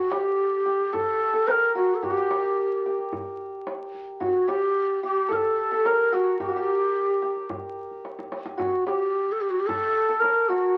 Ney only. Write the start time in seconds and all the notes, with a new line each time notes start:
Already playing: F#4
0.11 G4
0.93 A4
1.47 A#4 C5
1.77 F#4
1.95 A4
2.04 G4
4.22 F#4
4.48 G4
5.04 G4
5.32 A4 A#4
5.86 A#4
6.14 F#4
6.41 G4
8.59 F#4
8.86 G4 G#4
9.32 A4
9.41 G4
9.50 F#4
9.60 G4
9.67 A4
10.20 A#4
10.49 F#4